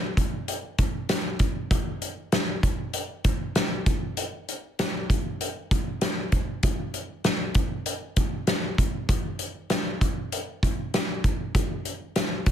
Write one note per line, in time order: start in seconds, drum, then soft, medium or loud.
0.17 kick medium
0.17 closed hi-hat medium
0.48 closed hi-hat medium
0.78 kick medium
0.78 closed hi-hat medium
1.09 snare medium
1.09 closed hi-hat medium
1.39 kick medium
1.39 closed hi-hat soft
1.71 kick loud
1.71 closed hi-hat medium
2.02 closed hi-hat medium
2.32 snare loud
2.32 closed hi-hat medium
2.63 kick medium
2.63 closed hi-hat medium
2.93 closed hi-hat medium
3.24 kick medium
3.24 closed hi-hat medium
3.55 snare medium
3.55 closed hi-hat medium
3.86 kick medium
3.86 closed hi-hat medium
4.17 closed hi-hat medium
4.48 closed hi-hat medium
4.79 snare loud
4.79 closed hi-hat medium
5.10 kick medium
5.10 closed hi-hat medium
5.41 closed hi-hat medium
5.71 kick medium
5.71 closed hi-hat medium
6.01 snare medium
6.01 closed hi-hat medium
6.32 kick medium
6.32 closed hi-hat medium
6.63 kick medium
6.63 closed hi-hat medium
6.94 closed hi-hat medium
7.24 snare medium
7.24 closed hi-hat medium
7.54 kick medium
7.54 closed hi-hat medium
7.86 closed hi-hat medium
8.16 kick medium
8.16 closed hi-hat medium
8.47 snare medium
8.47 closed hi-hat medium
8.78 kick medium
8.78 closed hi-hat medium
9.09 kick loud
9.09 closed hi-hat medium
9.39 closed hi-hat medium
9.70 snare medium
9.70 closed hi-hat medium
10.01 kick medium
10.01 closed hi-hat medium
10.32 closed hi-hat medium
10.63 kick medium
10.63 closed hi-hat medium
10.94 snare medium
10.94 closed hi-hat medium
11.24 kick medium
11.24 closed hi-hat soft
11.55 kick medium
11.55 closed hi-hat medium
11.85 closed hi-hat medium
12.16 snare medium
12.16 closed hi-hat medium
12.46 kick medium
12.46 closed hi-hat medium